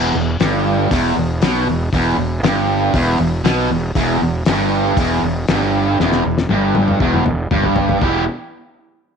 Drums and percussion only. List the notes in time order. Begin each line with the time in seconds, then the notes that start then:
0.40 snare, open hi-hat
0.91 kick, open hi-hat
1.42 snare, open hi-hat
1.93 kick, open hi-hat
2.44 snare, open hi-hat
2.94 kick, open hi-hat
3.45 snare, open hi-hat
3.95 kick, open hi-hat
4.46 snare, open hi-hat
4.97 kick, open hi-hat
5.48 snare, open hi-hat
5.62 snare
6.00 snare
6.12 snare
6.38 snare
6.49 high tom
6.75 high tom
6.88 mid tom
7.00 kick
7.14 mid tom
7.26 mid tom
7.51 mid tom
7.64 floor tom
7.76 floor tom
7.89 floor tom
8.02 kick